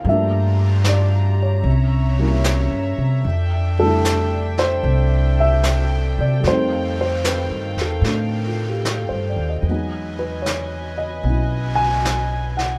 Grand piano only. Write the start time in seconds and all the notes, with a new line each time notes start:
0.06 F3 A3 A#3 E5
0.11 D4
0.89 D5
1.42 C#5
2.19 G3 A#3 C#4 E4
3.79 G3 A3 D4 A4
3.84 E4
4.59 C5
5.40 E5
6.21 D5
6.40 G3 A3
6.48 C4 D#4 C5
7.01 C5
7.25 B4
7.81 A4
8.05 A3 D4
8.47 F4
8.69 G4
8.90 A4
9.09 C5
9.29 D5
9.49 D#5
9.69 F#3 G#3 B3 D#4
10.19 B4
10.42 C#5
10.98 D#5
11.26 B3 C#4 E4
11.75 G#5
12.57 F#5